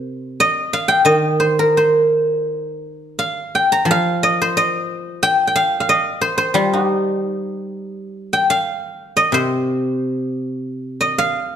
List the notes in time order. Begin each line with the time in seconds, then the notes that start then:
Already playing: C3 A#4 C5
0.40 D#5
0.73 F5
0.88 G5
1.05 D#3 D#5
1.40 C5
1.59 A#4
1.77 C5
3.19 F5
3.55 G5
3.72 A#5
3.85 F3
3.91 F5
4.23 D#5
4.42 C5
4.57 D#5
5.23 G5
5.47 G5
5.56 F5
5.80 F5
5.89 D#5
6.21 C5
6.38 C5
6.54 G3 F4
6.73 D#4
6.85 G4
8.33 G5
8.50 F5
9.17 D#5
9.32 C3 C5
11.01 D#5
11.18 F5